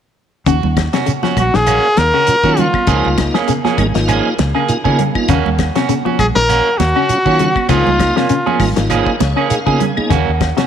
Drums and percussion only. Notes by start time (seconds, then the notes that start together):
0.46 kick, closed hi-hat, shekere
0.63 low conga
0.77 kick, snare, closed hi-hat, high conga, claves, shekere
0.93 snare, closed hi-hat, high conga
1.06 closed hi-hat, shekere
1.23 snare, high conga
1.37 kick, closed hi-hat, low conga, claves, shekere
1.54 snare
1.67 closed hi-hat, claves, shekere
1.97 snare, closed hi-hat, high conga, shekere
2.15 claves
2.27 closed hi-hat, shekere
2.44 kick, high conga
2.57 closed hi-hat, low conga, shekere
2.74 kick, high conga, claves
2.87 kick, closed hi-hat, shekere
3.05 low conga
3.18 kick, snare, closed hi-hat, high conga, claves, shekere
3.35 snare, high conga
3.48 closed hi-hat, high conga, shekere
3.65 snare, high conga
3.78 kick, closed hi-hat, low conga, claves, shekere
3.95 snare, closed hi-hat
4.08 closed hi-hat, claves, shekere
4.38 snare, closed hi-hat, high conga, shekere
4.56 claves
4.68 closed hi-hat, shekere
4.85 kick, high conga
4.99 closed hi-hat, low conga, shekere
5.15 kick, high conga, claves
5.28 kick, closed hi-hat, shekere
5.46 low conga
5.59 kick, snare, closed hi-hat, high conga, claves, shekere
5.75 snare, closed hi-hat, high conga
5.89 closed hi-hat, high conga, shekere
6.06 high conga
6.19 kick, closed hi-hat, low conga, claves, shekere
6.36 snare
6.50 closed hi-hat, claves, shekere
6.80 snare, closed hi-hat, high conga, shekere
6.96 claves
7.09 closed hi-hat, shekere
7.26 kick, high conga
7.39 closed hi-hat, low conga, shekere
7.56 kick, high conga, claves
7.69 kick, closed hi-hat, shekere
7.87 low conga
7.99 kick, snare, closed hi-hat, high conga, claves, shekere
8.17 snare, high conga
8.29 closed hi-hat, shekere
8.47 high conga
8.60 kick, open hi-hat, low conga, claves, shekere
8.76 snare, closed hi-hat
8.90 closed hi-hat, claves, shekere
9.06 kick
9.20 snare, closed hi-hat, high conga, shekere
9.37 claves
9.50 closed hi-hat, shekere
9.67 kick, high conga
9.80 closed hi-hat, low conga, shekere
9.97 high conga, claves
10.11 kick, closed hi-hat, shekere
10.41 kick, snare, closed hi-hat, high conga, claves, shekere
10.58 snare, closed hi-hat, high conga